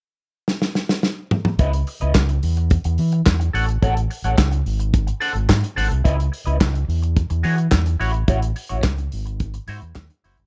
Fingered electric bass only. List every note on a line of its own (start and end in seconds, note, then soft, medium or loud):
1.59 1.80 C#2 medium
2.02 2.12 C#2 medium
2.16 2.37 C#2 medium
2.43 2.75 E2 medium
2.85 2.96 E2 medium
2.99 3.20 E3 loud
3.27 3.48 E2 medium
3.54 3.75 A1 medium
3.83 4.04 A1 medium
4.24 4.35 A1 medium
4.38 4.60 C#2 medium
4.66 5.08 G#1 medium
5.35 5.46 G#1 medium
5.49 5.60 G#2 medium
5.77 5.88 G#1 medium
5.91 6.02 C2 loud
6.05 6.26 C#2 loud
6.47 6.58 C#2 medium
6.61 6.82 C#2 medium
6.88 7.20 E2 medium
7.31 7.41 E2 medium
7.44 7.66 E3 loud
7.73 7.94 E2 medium
8.00 8.21 A1 medium
8.28 8.50 A1 medium
8.72 8.82 A1 medium
8.84 9.05 C#2 medium
9.13 9.55 G#1 medium
9.68 9.79 G#2 loud
9.82 9.93 E2 medium
9.96 10.07 D#2 medium
10.25 10.35 F#1 medium
10.39 10.46 G1 medium